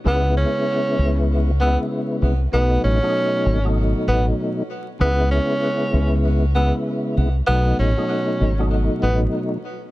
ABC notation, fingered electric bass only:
X:1
M:4/4
L:1/16
Q:"Swing 16ths" 1/4=97
K:C#m
V:1 name="Fingered electric bass" clef=bass
C,,3 z3 C,,4- C,, z3 ^B,,,2 | B,,,2 A,,, z3 G,,,4 A,,,2 z4 | C,,3 z3 C,,4- C,, z3 ^B,,,2 | B,,,2 A,,, z3 G,,,4 A,,,2 z4 |]